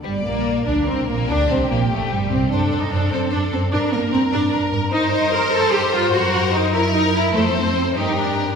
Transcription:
0.03 double bass section G1, violin section G3 D5, viola section G3, cello section G3
0.24 double bass section A#1, violin section A#3, viola section A#3, cello section A#3
0.66 double bass section D2, cello section D4, violin section D4 A#4, viola section D4
0.87 double bass section C2, violin section C4, cello section C4, viola section C4
1.08 double bass section A#1, cello section A#3, violin section A#3, viola section A#3
1.28 double bass section D2, cello section D4, violin section D4 G4, viola section D4
1.50 double bass section C2, cello section C4, violin section C4, viola section C4
1.70 double bass section A#1, cello section A#3, viola section A#3, violin section A#3
1.90 double bass section A1, cello section A3, viola section A3, violin section A3
2.10 double bass section G1, cello section G3, viola section G3, violin section G3
2.31 double bass section C2, cello section C4, viola section C4, violin section C4
2.50 double bass section F#2, viola section D4, cello section D4, violin section A4 C5
2.71 double bass section F#2, violin section C5
2.81 viola section D#4, cello section D#4
2.91 double bass section F#2, viola section D4, cello section D4, violin section C5
3.10 double bass section F#2, viola section C4, cello section C4, violin section C5
3.32 double bass section F#2, viola section D4, cello section D4, violin section C5
3.52 double bass section F#2, viola section C4, cello section C4, violin section C5
3.72 double bass section G2, cello section D4, viola section D4, violin section A#4
3.92 double bass section G2, cello section A#3, viola section A#3, violin section A#4
4.12 double bass section G2, cello section C4, viola section C4, violin section A#4
4.32 double bass section G2, viola section D4, cello section D4, violin section A#4
4.53 double bass section G2, violin section A#4
4.73 double bass section G2, violin section A#4
4.92 double bass section G2, viola section D#4, cello section D#4, violin section A#4 C5
5.12 viola section D#4, cello section D#4
5.32 viola section A#4, cello section A#4
5.52 viola section A4, cello section A4
5.72 viola section G4, cello section G4
5.92 viola section F4, cello section F4
6.12 double bass section F#2, cello section F#4, viola section F#4, violin section A#4
6.53 cello section D#4, viola section D#4
6.73 viola section E4, cello section E4, violin section A#4
6.93 cello section D#4, viola section D#4
7.13 cello section E4, viola section E4
7.33 double bass section F2, cello section A3, viola section A3, violin section A4 C5
7.55 cello section C4, viola section C4
7.96 double bass section G2, cello section D#4, viola section D#4, violin section G4 A#4
8.18 cello section D4, viola section D4

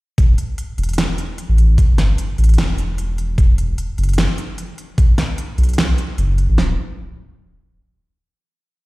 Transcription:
0.18 sub bass D1, kick, closed hi-hat
0.38 closed hi-hat
0.58 closed hi-hat
0.78 sub bass E1, closed hi-hat
0.83 closed hi-hat
0.89 closed hi-hat
0.93 closed hi-hat
0.98 snare, closed hi-hat
1.18 closed hi-hat
1.38 closed hi-hat
1.49 sub bass A1
1.58 closed hi-hat
1.78 sub bass G1, kick, closed hi-hat
1.98 snare, closed hi-hat
2.18 closed hi-hat
2.38 sub bass A1, closed hi-hat
2.44 closed hi-hat
2.49 closed hi-hat
2.54 closed hi-hat
2.58 sub bass E1, snare, closed hi-hat
2.78 closed hi-hat
2.98 closed hi-hat
3.18 closed hi-hat
3.38 sub bass E1, kick, closed hi-hat
3.58 closed hi-hat
3.78 closed hi-hat
3.98 sub bass F#1, closed hi-hat
4.03 closed hi-hat
4.09 closed hi-hat
4.13 closed hi-hat
4.18 snare, closed hi-hat
4.38 closed hi-hat
4.58 closed hi-hat
4.78 closed hi-hat
4.98 kick, closed hi-hat
5.18 snare, closed hi-hat
5.38 closed hi-hat
5.58 sub bass B1, closed hi-hat
5.63 closed hi-hat
5.69 closed hi-hat
5.74 closed hi-hat
5.78 snare, closed hi-hat
5.98 closed hi-hat
6.18 sub bass F#1, closed hi-hat
6.38 closed hi-hat
6.49 sub bass A1
6.58 sub bass D1, snare

